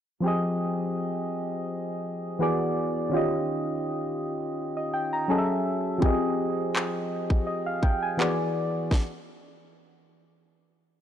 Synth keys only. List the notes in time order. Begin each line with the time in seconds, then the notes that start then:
0.20 F3 C4 G4
0.26 G#4 D#5
2.39 E3 B3 F#4 G#4 D5
3.09 D#3 C#4 F4
3.15 G4 D#5
4.77 D#5
4.94 G5
5.13 A#5
5.28 F#3 C#4 G#4 A4 D#5
5.38 E5
5.98 F3 C4 G4
6.04 G#4 D#5
7.47 D#5
7.66 F5
7.83 G5
8.02 G#5
8.17 E3 B3 F#4 G#4 D5